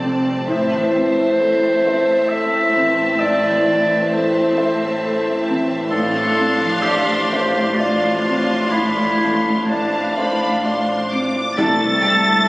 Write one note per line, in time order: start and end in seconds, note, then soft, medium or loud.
0.00 0.47 F1 soft
0.00 0.46 F2 soft
0.00 0.47 F2 medium
0.00 0.54 F2 soft
0.00 0.53 C3 soft
0.00 0.25 C4 soft
0.00 0.47 C4 medium
0.00 0.49 C4 soft
0.00 0.54 D4 soft
0.00 0.54 A4 soft
0.00 1.38 A4 soft
0.00 0.53 C5 soft
0.00 1.60 C5 soft
0.00 0.46 D5 medium
0.00 0.54 D5 soft
0.00 0.46 A5 soft
0.06 0.54 C3 soft
0.26 0.92 C4 soft
0.48 5.91 A1 medium
0.48 3.15 A2 medium
0.48 3.20 A2 medium
0.48 5.91 A2 medium
0.48 5.87 C4 medium
0.48 2.30 C5 medium
0.48 5.86 E5 medium
0.48 5.87 A5 medium
0.71 2.74 E3 soft
0.94 2.51 C4 soft
0.94 1.68 C4 soft
1.16 2.28 E4 soft
1.39 4.12 A4 medium
1.39 2.12 A4 soft
1.61 2.05 C5 medium
1.85 2.58 C5 medium
1.85 4.56 E5 medium
2.07 4.33 C5 medium
2.28 3.88 E4 medium
2.28 3.03 A4 medium
2.28 3.21 E5 loud
2.52 2.97 C4 soft
2.75 3.43 E3 soft
2.75 3.48 C4 medium
2.98 3.66 C4 medium
3.20 5.91 A2 medium
3.20 5.88 A2 medium
3.20 4.09 D5 loud
3.44 5.47 E3 medium
3.66 4.39 E3 medium
3.66 5.25 C4 medium
3.90 5.01 E4 medium
4.10 8.03 A4 medium
4.10 4.85 A4 soft
4.10 5.43 C5 medium
4.34 4.79 C5 medium
4.57 5.29 C5 medium
4.57 5.95 E5 medium
4.80 6.83 C5 medium
5.03 5.96 E4 medium
5.03 5.75 A4 medium
5.26 5.69 C4 medium
5.48 5.96 E3 soft
5.48 5.93 C4 medium
5.70 9.60 C4 medium
5.90 11.34 A1 medium
5.90 8.71 A2 medium
5.90 11.34 A2 medium
5.90 8.68 A2 medium
5.90 7.72 D4 medium
5.90 6.84 A4 loud
5.90 7.73 F5 medium
5.90 7.73 C6 medium
6.16 8.23 A3 soft
6.37 7.12 C4 soft
6.37 8.01 D4 soft
6.60 10.50 F3 medium
6.82 7.77 G4 medium
6.82 9.67 C5 medium
6.82 7.59 D5 soft
7.07 7.53 D5 medium
7.31 8.07 C5 soft
7.31 11.21 A5 medium
7.54 9.91 D5 medium
7.75 9.64 D4 medium
7.75 8.69 F4 medium
7.75 9.64 F5 medium
7.75 9.65 C6 medium
7.80 8.54 D5 soft
8.02 8.47 D4 soft
8.24 8.95 A3 soft
8.29 9.03 C4 soft
8.48 9.20 D4 soft
8.70 11.62 A2 medium
8.70 9.67 E4 medium
8.76 11.56 A2 soft
8.96 11.10 A3 soft
9.21 9.99 A3 soft
9.21 10.87 D4 soft
9.44 10.62 F4 soft
9.66 11.10 D4 medium
9.66 11.35 D4 medium
9.66 12.48 C5 soft
9.66 11.34 F5 medium
9.66 10.13 A5 medium
9.71 10.46 D5 soft
9.92 10.39 D5 soft
10.16 10.93 C5 soft
10.16 11.61 F5 soft
10.16 10.65 B5 medium
10.41 12.48 D5 soft
10.64 11.61 F4 soft
10.64 11.40 D5 soft
10.64 11.11 C6 medium
10.89 11.34 D4 soft
11.11 11.62 A3 soft
11.11 11.59 C4 soft
11.11 11.58 D6 medium
11.35 12.04 D4 soft
11.56 12.48 C2 medium
11.56 11.67 C2 medium
11.56 12.48 C3 medium
11.56 11.66 G3 medium
11.56 12.48 G3 medium
11.56 12.48 A3 medium
11.56 12.48 D4 medium
11.56 11.66 D4 medium
11.56 11.64 G4 medium
11.56 12.48 A4 medium
11.56 11.65 D5 medium
11.56 12.48 A5 medium
11.56 12.48 A6 loud
11.82 12.48 G3 soft
12.01 12.10 G4 medium
12.01 12.09 D5 soft
12.05 12.13 C2 medium
12.05 12.13 G3 soft
12.05 12.13 D4 medium
12.05 12.48 D4 soft
12.27 12.48 G4 soft
12.45 12.48 G4 medium